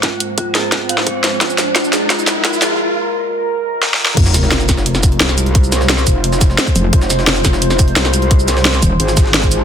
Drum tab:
CC |------------------------------------------------|------------------------------------------------|------------------------------------------------|x-----------------------------------------------|
HH |x-----x-----x-----x-----x-----x-----x-----x-----|x-----x-----x-----x-----x-----x-----x-----x-----|------------------------------------------------|x-----x-----x-----x-----x-----x--x--x-----x--x--|
SH |------------------------------------------------|---x--x--------x--x--------x--x--------x--x-----|------------------------------------------------|---x--x--------x--x--------x--x--------x--x-----|
SD |o-----------------o-----o--------o--------o-----|o-----o-----o-----o-----o-----o-----o-----o-----|------------------------------------o---o---o---|---o--o--o--o-----o--o-----o--------o--o--------|
BD |o-----------o-----------o-----------o-----------|o-----------o-----------o-----------o-----------|------------------------------------------------|o-----------------o-----------o-----------------|

CC |------------------------------------------------|------------------------------------------------|------------------------------------------------|
HH |x-----x-----x-----x-----x-----x-----x-----x-----|x-----x-----x-----x-----x-----x--x--x-----x--x--|x-----x-----x-----x-----x-----x-----x-----x-----|
SH |---x--x--------x--x--------x--x--------x--x-----|---x--x--------x--x--------x--x--------x--x-----|---x--x--------x--x--------x--x--------x--x-----|
SD |------o--o--o--o-----------o--o--o--o-----------|---o--o--o--o-----o--o-----o--------o--o--------|------o--o--o--o-----------o--o--o--o-----------|
BD |o-----------------o-----------o--------o--------|o-----------------o-----------o-----------------|o-----------------o-----------o--------o--------|